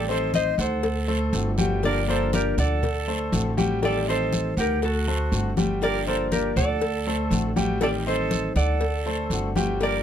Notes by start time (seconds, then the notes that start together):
Already playing: A1 D#3 G3 C4 G4 D5
0.09 C4 A4 C5 D#5, high conga
0.34 C5 D#5, cowbell, high conga, short guiro
0.58 D2 A4 C5 F#5, cowbell, high conga, short guiro
0.83 muted nylon-string guitar stroke, cowbell, high conga, long guiro
1.08 A3 A4 C5, high conga
1.33 G1 D3 A3 C4 F#4, cowbell, high conga, short guiro
1.58 G3 A3 C4 F#4 G4 G5, high conga, short guiro
1.82 D3 F3 A#3 D4 G4 A#4 D5, cowbell, high conga, long guiro
2.08 A#3 A4 A#4 C5 D5, high conga
2.33 A#3 G4 A#4 D5, cowbell, high conga, short guiro
2.58 D2 A4 D5 F#5, cowbell, low conga, short guiro
2.83 muted nylon-string guitar stroke, cowbell, high conga, low conga, long guiro
3.07 A3 A4 C5, high conga
3.32 A1 D3 A3 C4 F#4, cowbell, high conga, short guiro
3.57 G3 A3 C4 F#4 G4 G5, high conga, short guiro
3.82 D#3 G3 C4 G4 A4 D5 G5, cowbell, high conga, long guiro
4.08 C4 A4 C5 D#5, high conga
4.33 cowbell, high conga, short guiro
4.57 D2 G4 A#4 F#5, cowbell, high conga, short guiro
4.82 F#4 A4, muted nylon-string guitar stroke, cowbell, high conga, long guiro
5.07 A3 A4 C5, high conga
5.32 G1 D3 A3 C4 F#4, cowbell, high conga, short guiro
5.57 G3 A3 C4 F#4 G4 G5, high conga, short guiro
5.81 D3 F3 A#3 D4 G4 A#4 D5, cowbell, high conga, long guiro
6.06 A#3 A4 A#4 C5 D5, high conga
6.31 A#3 G4 A#4 D5, cowbell, high conga, short guiro
6.56 D2 A4 D5 F#5, cowbell, low conga, short guiro
6.81 muted nylon-string guitar stroke, cowbell, high conga, long guiro
7.07 A3 A4 C5, high conga
7.30 A1 D3 A3 C4 F#4, cowbell, high conga, short guiro
7.56 G3 A3 C4 F#4 G4 G5, high conga, short guiro
7.81 D#3 G3 C4 G4 A4 D5 G5, cowbell, high conga, long guiro
8.06 C4 A4 C5 D#5, high conga
8.31 cowbell, high conga, short guiro
8.56 D2 A4 D5 F#5, cowbell, high conga, short guiro
8.81 muted nylon-string guitar stroke, cowbell, high conga, long guiro
9.06 A3 A4 C5, high conga
9.30 G1 D3 A3 C4 F#4, cowbell, high conga, short guiro
9.56 G3 A3 C4 F#4 G4 G5, high conga, short guiro
9.80 D3 F3 A#3 D4 G4 A#4 D5, cowbell, high conga, long guiro